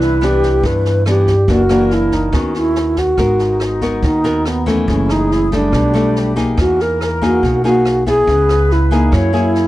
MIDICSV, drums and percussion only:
0, 0, Header, 1, 2, 480
1, 0, Start_track
1, 0, Tempo, 424328
1, 1678, Time_signature, 4, 2, 24, 8
1, 10945, End_track
2, 0, Start_track
2, 0, Title_t, "Drums"
2, 6, Note_on_c, 9, 38, 24
2, 119, Note_off_c, 9, 38, 0
2, 246, Note_on_c, 9, 37, 56
2, 246, Note_on_c, 9, 38, 24
2, 359, Note_off_c, 9, 37, 0
2, 359, Note_off_c, 9, 38, 0
2, 480, Note_on_c, 9, 36, 21
2, 481, Note_on_c, 9, 38, 23
2, 593, Note_off_c, 9, 36, 0
2, 594, Note_off_c, 9, 38, 0
2, 718, Note_on_c, 9, 36, 53
2, 719, Note_on_c, 9, 38, 22
2, 832, Note_off_c, 9, 36, 0
2, 832, Note_off_c, 9, 38, 0
2, 958, Note_on_c, 9, 38, 24
2, 1071, Note_off_c, 9, 38, 0
2, 1196, Note_on_c, 9, 37, 66
2, 1196, Note_on_c, 9, 38, 24
2, 1309, Note_off_c, 9, 37, 0
2, 1309, Note_off_c, 9, 38, 0
2, 1434, Note_on_c, 9, 38, 24
2, 1435, Note_on_c, 9, 36, 27
2, 1547, Note_off_c, 9, 38, 0
2, 1548, Note_off_c, 9, 36, 0
2, 1674, Note_on_c, 9, 36, 54
2, 1674, Note_on_c, 9, 38, 23
2, 1787, Note_off_c, 9, 36, 0
2, 1787, Note_off_c, 9, 38, 0
2, 1913, Note_on_c, 9, 37, 58
2, 1913, Note_on_c, 9, 38, 25
2, 2026, Note_off_c, 9, 37, 0
2, 2026, Note_off_c, 9, 38, 0
2, 2151, Note_on_c, 9, 38, 24
2, 2264, Note_off_c, 9, 38, 0
2, 2390, Note_on_c, 9, 38, 23
2, 2392, Note_on_c, 9, 36, 25
2, 2503, Note_off_c, 9, 38, 0
2, 2505, Note_off_c, 9, 36, 0
2, 2632, Note_on_c, 9, 36, 54
2, 2632, Note_on_c, 9, 37, 52
2, 2632, Note_on_c, 9, 38, 21
2, 2745, Note_off_c, 9, 36, 0
2, 2746, Note_off_c, 9, 37, 0
2, 2746, Note_off_c, 9, 38, 0
2, 2871, Note_on_c, 9, 38, 23
2, 2984, Note_off_c, 9, 38, 0
2, 3111, Note_on_c, 9, 38, 26
2, 3224, Note_off_c, 9, 38, 0
2, 3349, Note_on_c, 9, 38, 25
2, 3352, Note_on_c, 9, 36, 25
2, 3462, Note_off_c, 9, 38, 0
2, 3465, Note_off_c, 9, 36, 0
2, 3591, Note_on_c, 9, 37, 54
2, 3591, Note_on_c, 9, 38, 21
2, 3593, Note_on_c, 9, 36, 49
2, 3704, Note_off_c, 9, 37, 0
2, 3704, Note_off_c, 9, 38, 0
2, 3706, Note_off_c, 9, 36, 0
2, 3830, Note_on_c, 9, 38, 23
2, 3943, Note_off_c, 9, 38, 0
2, 4070, Note_on_c, 9, 37, 58
2, 4070, Note_on_c, 9, 38, 23
2, 4183, Note_off_c, 9, 37, 0
2, 4183, Note_off_c, 9, 38, 0
2, 4313, Note_on_c, 9, 36, 22
2, 4313, Note_on_c, 9, 38, 23
2, 4426, Note_off_c, 9, 36, 0
2, 4427, Note_off_c, 9, 38, 0
2, 4552, Note_on_c, 9, 38, 22
2, 4554, Note_on_c, 9, 36, 55
2, 4665, Note_off_c, 9, 38, 0
2, 4667, Note_off_c, 9, 36, 0
2, 4796, Note_on_c, 9, 38, 25
2, 4909, Note_off_c, 9, 38, 0
2, 5036, Note_on_c, 9, 37, 60
2, 5036, Note_on_c, 9, 38, 24
2, 5149, Note_off_c, 9, 37, 0
2, 5149, Note_off_c, 9, 38, 0
2, 5277, Note_on_c, 9, 36, 23
2, 5282, Note_on_c, 9, 38, 24
2, 5390, Note_off_c, 9, 36, 0
2, 5395, Note_off_c, 9, 38, 0
2, 5518, Note_on_c, 9, 36, 53
2, 5523, Note_on_c, 9, 38, 20
2, 5631, Note_off_c, 9, 36, 0
2, 5636, Note_off_c, 9, 38, 0
2, 5761, Note_on_c, 9, 37, 59
2, 5761, Note_on_c, 9, 38, 24
2, 5874, Note_off_c, 9, 37, 0
2, 5874, Note_off_c, 9, 38, 0
2, 6007, Note_on_c, 9, 38, 23
2, 6120, Note_off_c, 9, 38, 0
2, 6239, Note_on_c, 9, 36, 25
2, 6240, Note_on_c, 9, 38, 24
2, 6352, Note_off_c, 9, 36, 0
2, 6353, Note_off_c, 9, 38, 0
2, 6478, Note_on_c, 9, 36, 51
2, 6480, Note_on_c, 9, 37, 55
2, 6480, Note_on_c, 9, 38, 23
2, 6592, Note_off_c, 9, 36, 0
2, 6593, Note_off_c, 9, 37, 0
2, 6593, Note_off_c, 9, 38, 0
2, 6719, Note_on_c, 9, 38, 24
2, 6832, Note_off_c, 9, 38, 0
2, 6962, Note_on_c, 9, 38, 24
2, 7075, Note_off_c, 9, 38, 0
2, 7199, Note_on_c, 9, 36, 26
2, 7202, Note_on_c, 9, 38, 25
2, 7312, Note_off_c, 9, 36, 0
2, 7315, Note_off_c, 9, 38, 0
2, 7439, Note_on_c, 9, 36, 48
2, 7440, Note_on_c, 9, 37, 52
2, 7440, Note_on_c, 9, 38, 22
2, 7552, Note_off_c, 9, 36, 0
2, 7553, Note_off_c, 9, 37, 0
2, 7553, Note_off_c, 9, 38, 0
2, 7685, Note_on_c, 9, 38, 23
2, 7798, Note_off_c, 9, 38, 0
2, 7927, Note_on_c, 9, 37, 56
2, 7927, Note_on_c, 9, 38, 23
2, 8040, Note_off_c, 9, 37, 0
2, 8040, Note_off_c, 9, 38, 0
2, 8163, Note_on_c, 9, 36, 23
2, 8170, Note_on_c, 9, 38, 22
2, 8276, Note_off_c, 9, 36, 0
2, 8283, Note_off_c, 9, 38, 0
2, 8403, Note_on_c, 9, 36, 52
2, 8408, Note_on_c, 9, 38, 21
2, 8516, Note_off_c, 9, 36, 0
2, 8521, Note_off_c, 9, 38, 0
2, 8647, Note_on_c, 9, 38, 22
2, 8760, Note_off_c, 9, 38, 0
2, 8882, Note_on_c, 9, 37, 59
2, 8882, Note_on_c, 9, 38, 24
2, 8996, Note_off_c, 9, 37, 0
2, 8996, Note_off_c, 9, 38, 0
2, 9121, Note_on_c, 9, 36, 25
2, 9123, Note_on_c, 9, 38, 24
2, 9234, Note_off_c, 9, 36, 0
2, 9236, Note_off_c, 9, 38, 0
2, 9360, Note_on_c, 9, 38, 20
2, 9361, Note_on_c, 9, 36, 55
2, 9473, Note_off_c, 9, 38, 0
2, 9474, Note_off_c, 9, 36, 0
2, 9603, Note_on_c, 9, 37, 61
2, 9603, Note_on_c, 9, 38, 22
2, 9716, Note_off_c, 9, 37, 0
2, 9716, Note_off_c, 9, 38, 0
2, 9843, Note_on_c, 9, 38, 20
2, 9956, Note_off_c, 9, 38, 0
2, 10080, Note_on_c, 9, 36, 22
2, 10082, Note_on_c, 9, 38, 22
2, 10193, Note_off_c, 9, 36, 0
2, 10195, Note_off_c, 9, 38, 0
2, 10320, Note_on_c, 9, 36, 53
2, 10322, Note_on_c, 9, 37, 57
2, 10322, Note_on_c, 9, 38, 21
2, 10433, Note_off_c, 9, 36, 0
2, 10435, Note_off_c, 9, 37, 0
2, 10435, Note_off_c, 9, 38, 0
2, 10559, Note_on_c, 9, 38, 22
2, 10672, Note_off_c, 9, 38, 0
2, 10797, Note_on_c, 9, 38, 24
2, 10910, Note_off_c, 9, 38, 0
2, 10945, End_track
0, 0, End_of_file